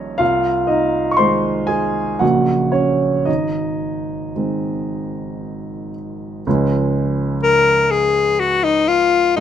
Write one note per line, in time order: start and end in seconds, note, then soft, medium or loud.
0.00 0.17 D#3 soft
0.00 0.17 G3 soft
0.00 0.17 A#3 medium
0.00 0.23 C#4 medium
0.00 0.23 C#5 medium
0.18 1.16 C2 medium
0.18 0.65 F4 medium
0.18 0.68 F5 medium
0.67 1.08 D#4 medium
0.67 1.11 D#5 medium
1.11 1.19 C#6 medium
1.17 2.18 D#3 soft
1.17 2.18 G#3 soft
1.17 1.66 C5 medium
1.17 1.69 C6 medium
1.67 2.17 G#4 medium
1.67 2.20 G#5 medium
2.19 3.24 A#1 medium
2.19 3.23 C#3 soft
2.19 3.24 F#3 soft
2.19 3.24 A#3 soft
2.19 2.70 F#4 medium
2.19 2.73 F#5 medium
2.72 3.23 C#4 soft
2.72 3.26 C#5 medium
3.25 4.32 G#1 soft
3.25 5.90 D#4 soft
3.25 5.94 D#5 medium
4.36 6.42 D#3 soft
4.36 6.42 G#3 soft
4.36 6.42 C4 soft
6.47 9.34 C#2 medium
6.47 9.34 F3 soft
6.47 9.34 G#3 soft
6.47 9.34 C#4 medium
7.43 7.93 A#4 loud
7.91 8.41 G#4 medium
8.40 8.65 F#4 medium
8.64 8.90 D#4 medium
8.88 9.36 F4 medium
9.37 9.40 G#3 soft
9.37 9.40 D#4 loud